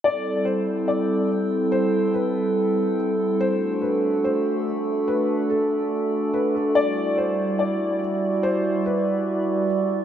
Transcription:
0, 0, Header, 1, 4, 480
1, 0, Start_track
1, 0, Tempo, 419580
1, 48, Time_signature, 4, 2, 24, 8
1, 11495, End_track
2, 0, Start_track
2, 0, Title_t, "Felt piano"
2, 0, Program_c, 0, 0
2, 49, Note_on_c, 0, 74, 91
2, 499, Note_off_c, 0, 74, 0
2, 517, Note_on_c, 0, 72, 75
2, 973, Note_off_c, 0, 72, 0
2, 1005, Note_on_c, 0, 74, 77
2, 1458, Note_off_c, 0, 74, 0
2, 1966, Note_on_c, 0, 72, 97
2, 2418, Note_off_c, 0, 72, 0
2, 2443, Note_on_c, 0, 71, 80
2, 3360, Note_off_c, 0, 71, 0
2, 3895, Note_on_c, 0, 72, 94
2, 4343, Note_off_c, 0, 72, 0
2, 4364, Note_on_c, 0, 71, 78
2, 4817, Note_off_c, 0, 71, 0
2, 4854, Note_on_c, 0, 72, 83
2, 5302, Note_off_c, 0, 72, 0
2, 5808, Note_on_c, 0, 71, 93
2, 6259, Note_off_c, 0, 71, 0
2, 6291, Note_on_c, 0, 69, 77
2, 7203, Note_off_c, 0, 69, 0
2, 7247, Note_on_c, 0, 71, 87
2, 7475, Note_off_c, 0, 71, 0
2, 7491, Note_on_c, 0, 69, 69
2, 7718, Note_off_c, 0, 69, 0
2, 7725, Note_on_c, 0, 74, 99
2, 8178, Note_off_c, 0, 74, 0
2, 8208, Note_on_c, 0, 72, 77
2, 8659, Note_off_c, 0, 72, 0
2, 8684, Note_on_c, 0, 74, 79
2, 9137, Note_off_c, 0, 74, 0
2, 9646, Note_on_c, 0, 72, 99
2, 10098, Note_off_c, 0, 72, 0
2, 10133, Note_on_c, 0, 71, 88
2, 11045, Note_off_c, 0, 71, 0
2, 11495, End_track
3, 0, Start_track
3, 0, Title_t, "Synth texture"
3, 0, Program_c, 1, 99
3, 48, Note_on_c, 1, 69, 71
3, 48, Note_on_c, 1, 79, 89
3, 49, Note_on_c, 1, 60, 78
3, 3850, Note_off_c, 1, 60, 0
3, 3850, Note_off_c, 1, 79, 0
3, 3887, Note_on_c, 1, 57, 77
3, 3887, Note_on_c, 1, 74, 85
3, 7682, Note_off_c, 1, 69, 0
3, 7689, Note_off_c, 1, 57, 0
3, 7729, Note_on_c, 1, 55, 76
3, 7730, Note_on_c, 1, 64, 71
3, 7730, Note_on_c, 1, 66, 73
3, 11495, Note_off_c, 1, 55, 0
3, 11495, Note_off_c, 1, 64, 0
3, 11495, Note_off_c, 1, 66, 0
3, 11495, Note_off_c, 1, 74, 0
3, 11495, End_track
4, 0, Start_track
4, 0, Title_t, "Glass harmonica"
4, 0, Program_c, 2, 92
4, 45, Note_on_c, 2, 64, 58
4, 45, Note_on_c, 2, 69, 75
4, 46, Note_on_c, 2, 60, 61
4, 47, Note_on_c, 2, 55, 70
4, 3848, Note_off_c, 2, 64, 0
4, 3848, Note_off_c, 2, 69, 0
4, 3849, Note_off_c, 2, 55, 0
4, 3849, Note_off_c, 2, 60, 0
4, 3889, Note_on_c, 2, 69, 72
4, 3890, Note_on_c, 2, 57, 70
4, 3890, Note_on_c, 2, 62, 65
4, 3890, Note_on_c, 2, 66, 61
4, 7690, Note_off_c, 2, 69, 0
4, 7691, Note_off_c, 2, 57, 0
4, 7691, Note_off_c, 2, 62, 0
4, 7728, Note_on_c, 2, 55, 67
4, 7728, Note_on_c, 2, 64, 62
4, 7729, Note_on_c, 2, 74, 75
4, 11495, Note_off_c, 2, 55, 0
4, 11495, Note_off_c, 2, 64, 0
4, 11495, Note_off_c, 2, 66, 0
4, 11495, Note_off_c, 2, 74, 0
4, 11495, End_track
0, 0, End_of_file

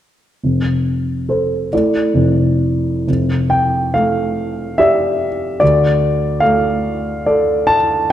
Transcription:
0, 0, Header, 1, 2, 480
1, 0, Start_track
1, 0, Key_signature, -1, "major"
1, 0, Tempo, 860832
1, 239, Time_signature, 3, 2, 24, 8
1, 1198, Tempo, 930233
1, 1678, Tempo, 872093
1, 2158, Tempo, 829876
1, 4570, End_track
2, 0, Start_track
2, 0, Title_t, "Grand piano"
2, 0, Program_c, 0, 0
2, 242, Note_on_c, 0, 29, 39
2, 328, Control_c, 0, 64, 127
2, 718, Note_on_c, 0, 69, 33
2, 723, Note_on_c, 0, 72, 35
2, 936, Note_off_c, 0, 69, 0
2, 938, Note_off_c, 0, 72, 0
2, 940, Note_off_c, 0, 29, 0
2, 964, Note_on_c, 0, 74, 32
2, 967, Note_on_c, 0, 57, 35
2, 970, Control_c, 0, 64, 0
2, 970, Note_on_c, 0, 69, 35
2, 971, Note_on_c, 0, 64, 34
2, 972, Note_off_c, 0, 74, 0
2, 976, Note_on_c, 0, 74, 34
2, 1071, Control_c, 0, 64, 127
2, 1193, Note_on_c, 0, 29, 53
2, 1661, Note_off_c, 0, 29, 0
2, 1661, Note_off_c, 0, 57, 0
2, 1662, Note_off_c, 0, 64, 0
2, 1663, Note_off_c, 0, 69, 0
2, 1664, Note_off_c, 0, 74, 0
2, 1676, Note_on_c, 0, 29, 38
2, 1686, Control_c, 0, 64, 0
2, 1788, Control_c, 0, 64, 127
2, 1909, Note_on_c, 0, 79, 53
2, 2152, Note_off_c, 0, 79, 0
2, 2152, Note_on_c, 0, 77, 57
2, 2154, Note_on_c, 0, 57, 33
2, 2638, Note_on_c, 0, 76, 63
2, 2639, Note_off_c, 0, 77, 0
2, 2644, Note_on_c, 0, 67, 32
2, 2651, Note_on_c, 0, 74, 34
2, 2929, Note_off_c, 0, 57, 0
2, 3097, Note_off_c, 0, 29, 0
2, 3099, Note_off_c, 0, 67, 0
2, 3102, Note_off_c, 0, 74, 0
2, 3111, Note_on_c, 0, 74, 60
2, 3118, Note_off_c, 0, 76, 0
2, 3119, Note_on_c, 0, 38, 40
2, 3130, Control_c, 0, 64, 0
2, 3241, Control_c, 0, 64, 127
2, 3577, Note_on_c, 0, 77, 65
2, 3584, Note_off_c, 0, 74, 0
2, 3587, Note_on_c, 0, 57, 34
2, 4074, Note_on_c, 0, 74, 41
2, 4075, Note_on_c, 0, 69, 36
2, 4308, Note_on_c, 0, 81, 72
2, 4309, Note_off_c, 0, 77, 0
2, 4364, Note_off_c, 0, 57, 0
2, 4535, Note_off_c, 0, 38, 0
2, 4540, Note_off_c, 0, 69, 0
2, 4540, Note_off_c, 0, 74, 0
2, 4556, Note_off_c, 0, 81, 0
2, 4567, Control_c, 0, 64, 0
2, 4570, End_track
0, 0, End_of_file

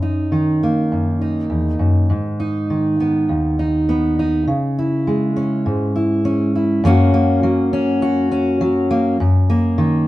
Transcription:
0, 0, Header, 1, 2, 480
1, 0, Start_track
1, 0, Tempo, 591716
1, 1704, Time_signature, 4, 2, 24, 8
1, 8173, End_track
2, 0, Start_track
2, 0, Title_t, "Steel-string acoustic guitar"
2, 0, Program_c, 0, 25
2, 0, Note_on_c, 0, 42, 50
2, 19, Note_on_c, 0, 63, 43
2, 258, Note_on_c, 0, 51, 47
2, 514, Note_on_c, 0, 58, 44
2, 736, Note_off_c, 0, 42, 0
2, 745, Note_on_c, 0, 42, 47
2, 976, Note_off_c, 0, 63, 0
2, 986, Note_on_c, 0, 63, 44
2, 1212, Note_off_c, 0, 42, 0
2, 1215, Note_on_c, 0, 40, 48
2, 1451, Note_off_c, 0, 40, 0
2, 1454, Note_on_c, 0, 42, 45
2, 1678, Note_off_c, 0, 63, 0
2, 1683, Note_off_c, 0, 58, 0
2, 1700, Note_off_c, 0, 42, 0
2, 1701, Note_on_c, 0, 44, 56
2, 1945, Note_on_c, 0, 63, 48
2, 2181, Note_off_c, 0, 51, 0
2, 2191, Note_on_c, 0, 51, 46
2, 2436, Note_on_c, 0, 59, 42
2, 2667, Note_off_c, 0, 44, 0
2, 2669, Note_on_c, 0, 39, 52
2, 2904, Note_off_c, 0, 63, 0
2, 2914, Note_on_c, 0, 63, 50
2, 3145, Note_off_c, 0, 59, 0
2, 3155, Note_on_c, 0, 59, 47
2, 3391, Note_off_c, 0, 63, 0
2, 3401, Note_on_c, 0, 63, 52
2, 3605, Note_off_c, 0, 59, 0
2, 3608, Note_off_c, 0, 63, 0
2, 3629, Note_on_c, 0, 49, 54
2, 3632, Note_off_c, 0, 39, 0
2, 3634, Note_off_c, 0, 51, 0
2, 3882, Note_on_c, 0, 64, 44
2, 4115, Note_on_c, 0, 56, 47
2, 4352, Note_on_c, 0, 61, 46
2, 4590, Note_on_c, 0, 44, 54
2, 4592, Note_off_c, 0, 49, 0
2, 4822, Note_off_c, 0, 64, 0
2, 4831, Note_on_c, 0, 64, 47
2, 5060, Note_off_c, 0, 61, 0
2, 5069, Note_on_c, 0, 61, 47
2, 5308, Note_off_c, 0, 64, 0
2, 5317, Note_on_c, 0, 64, 46
2, 5522, Note_off_c, 0, 44, 0
2, 5522, Note_off_c, 0, 61, 0
2, 5525, Note_off_c, 0, 56, 0
2, 5526, Note_off_c, 0, 64, 0
2, 5546, Note_on_c, 0, 42, 82
2, 5556, Note_on_c, 0, 54, 70
2, 5560, Note_on_c, 0, 58, 69
2, 5566, Note_on_c, 0, 61, 66
2, 5571, Note_on_c, 0, 66, 74
2, 5788, Note_off_c, 0, 58, 0
2, 5791, Note_on_c, 0, 58, 64
2, 6026, Note_off_c, 0, 54, 0
2, 6029, Note_on_c, 0, 54, 71
2, 6261, Note_off_c, 0, 61, 0
2, 6271, Note_on_c, 0, 61, 66
2, 6504, Note_off_c, 0, 66, 0
2, 6507, Note_on_c, 0, 66, 75
2, 6735, Note_off_c, 0, 61, 0
2, 6745, Note_on_c, 0, 61, 67
2, 6973, Note_off_c, 0, 54, 0
2, 6983, Note_on_c, 0, 54, 72
2, 7215, Note_off_c, 0, 58, 0
2, 7225, Note_on_c, 0, 58, 72
2, 7433, Note_off_c, 0, 42, 0
2, 7434, Note_off_c, 0, 54, 0
2, 7434, Note_off_c, 0, 61, 0
2, 7435, Note_off_c, 0, 58, 0
2, 7435, Note_off_c, 0, 66, 0
2, 7464, Note_on_c, 0, 42, 82
2, 7704, Note_on_c, 0, 58, 66
2, 7933, Note_on_c, 0, 51, 70
2, 8173, Note_off_c, 0, 42, 0
2, 8173, Note_off_c, 0, 51, 0
2, 8173, Note_off_c, 0, 58, 0
2, 8173, End_track
0, 0, End_of_file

